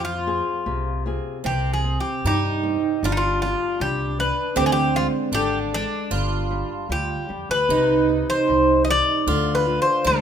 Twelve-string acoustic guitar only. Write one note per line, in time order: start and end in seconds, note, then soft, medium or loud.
1.44 2.25 C4 medium
2.26 3.04 D#4 medium
3.04 4.62 D4 medium
4.56 5.29 C4 medium
5.33 6.13 D4 loud
6.11 7.25 F4 medium
7.70 9.24 D#4 medium
9.28 10.07 F4 loud
10.05 10.21 D4 medium